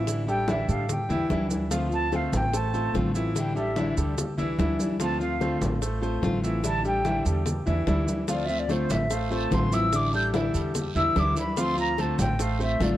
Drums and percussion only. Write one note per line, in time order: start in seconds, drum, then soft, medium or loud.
0.07 high bongo medium
0.07 high conga soft
0.07 maracas medium
0.27 high conga soft
0.27 maracas soft
0.48 high bongo medium
0.48 high conga loud
0.48 maracas soft
0.69 high bongo soft
0.69 maracas medium
0.89 high bongo medium
0.89 high conga soft
0.89 low conga medium
0.89 maracas medium
1.10 high conga soft
1.10 low conga medium
1.10 maracas soft
1.30 high bongo medium
1.30 low bongo medium
1.30 high conga medium
1.30 maracas soft
1.50 high bongo soft
1.50 high conga medium
1.50 maracas medium
1.71 high bongo medium
1.71 high conga soft
1.71 maracas medium
1.92 high conga soft
1.92 maracas soft
2.12 high bongo medium
2.12 high conga medium
2.12 maracas soft
2.33 high bongo soft
2.33 high conga loud
2.33 maracas medium
2.53 high bongo medium
2.53 high conga soft
2.53 maracas medium
2.74 high bongo soft
2.74 high conga soft
2.74 maracas soft
2.95 high bongo medium
2.95 low bongo medium
2.95 high conga medium
2.95 maracas soft
3.15 high bongo soft
3.15 maracas medium
3.36 high bongo medium
3.36 high conga soft
3.36 maracas medium
3.56 high conga soft
3.56 maracas soft
3.76 high bongo medium
3.76 high conga loud
3.76 maracas soft
3.97 high bongo soft
3.97 maracas medium
4.18 high bongo medium
4.18 high conga soft
4.18 low conga medium
4.18 maracas medium
4.38 high conga soft
4.38 low conga medium
4.38 maracas soft
4.59 high bongo medium
4.59 low bongo medium
4.59 high conga medium
4.59 maracas soft
4.79 high bongo soft
4.79 high conga medium
4.79 maracas medium
5.00 high bongo medium
5.00 high conga soft
5.00 maracas medium
5.21 high conga soft
5.21 maracas soft
5.41 high bongo medium
5.41 high conga medium
5.41 maracas soft
5.62 high bongo soft
5.62 high conga loud
5.62 maracas medium
5.82 high bongo medium
5.82 high conga soft
5.82 maracas medium
6.03 high bongo soft
6.03 high conga soft
6.03 maracas soft
6.23 high bongo medium
6.23 low bongo medium
6.23 high conga medium
6.23 maracas soft
6.43 high bongo soft
6.43 maracas medium
6.64 high bongo medium
6.64 high conga soft
6.64 maracas medium
6.85 high conga soft
6.85 maracas soft
7.05 high bongo medium
7.05 high conga loud
7.05 maracas soft
7.25 high bongo soft
7.25 maracas medium
7.46 high bongo medium
7.46 high conga soft
7.46 low conga medium
7.46 maracas medium
7.67 high conga soft
7.67 low conga medium
7.67 maracas soft
7.87 high bongo medium
7.87 low bongo medium
7.87 high conga medium
7.87 maracas soft
8.08 high bongo soft
8.08 high conga medium
8.08 maracas medium
8.28 high bongo medium
8.28 high conga soft
8.28 long guiro medium
8.28 maracas medium
8.49 high conga soft
8.49 maracas soft
8.69 high bongo medium
8.69 high conga medium
8.69 short guiro medium
8.69 maracas soft
8.90 high bongo soft
8.90 high conga loud
8.90 short guiro medium
8.90 maracas medium
9.10 high bongo medium
9.10 high conga soft
9.10 long guiro medium
9.10 maracas medium
9.31 high bongo soft
9.31 high conga soft
9.31 maracas soft
9.52 high bongo medium
9.52 low bongo medium
9.52 high conga medium
9.52 short guiro medium
9.52 maracas soft
9.72 high bongo soft
9.72 high conga medium
9.72 short guiro medium
9.72 maracas medium
9.93 high bongo medium
9.93 high conga soft
9.93 long guiro medium
9.93 maracas medium
10.13 high conga soft
10.13 maracas soft
10.34 high bongo medium
10.34 high conga loud
10.34 short guiro medium
10.34 maracas soft
10.54 high bongo soft
10.54 short guiro medium
10.54 maracas medium
10.75 high bongo medium
10.75 high conga soft
10.75 low conga medium
10.75 long guiro medium
10.75 maracas medium
10.96 high conga soft
10.96 low conga medium
10.96 maracas soft
11.16 high bongo medium
11.16 low bongo medium
11.16 high conga medium
11.16 short guiro medium
11.16 maracas soft
11.37 high bongo soft
11.37 high conga medium
11.37 short guiro medium
11.37 maracas medium
11.57 high bongo medium
11.57 long guiro medium
11.57 maracas medium
11.78 high conga soft
11.78 maracas soft
11.98 high bongo medium
11.98 high conga medium
11.98 short guiro medium
11.98 maracas soft
12.19 high bongo soft
12.19 high conga medium
12.19 short guiro medium
12.19 maracas medium
12.39 high bongo medium
12.39 high conga soft
12.39 long guiro medium
12.39 maracas medium
12.60 high bongo soft
12.60 high conga soft
12.60 maracas soft
12.80 high bongo medium
12.80 low bongo medium
12.80 high conga medium
12.80 short guiro medium
12.80 maracas soft